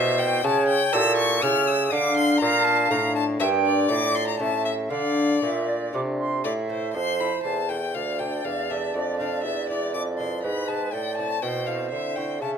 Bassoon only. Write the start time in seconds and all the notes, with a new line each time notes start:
Already playing: B2
0.44 C#3
0.94 A#2
1.43 C#3
1.92 D3
2.41 A#2
2.90 A2
3.40 G2
3.89 A2
4.40 A2
4.91 D3
5.42 A#2
5.94 C3
6.45 A2
6.95 F2
7.45 E2
7.95 D2
8.45 E2
8.95 F2
9.45 E2
9.94 F2
10.44 G#2
10.94 A2
11.42 B2
11.92 D3
12.41 C#3